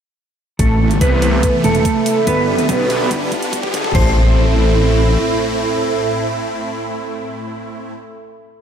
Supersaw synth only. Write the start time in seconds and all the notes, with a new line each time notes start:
0.59 C3 E3 A3
2.27 D3 G3 B3
3.95 A2 A3 C4 E4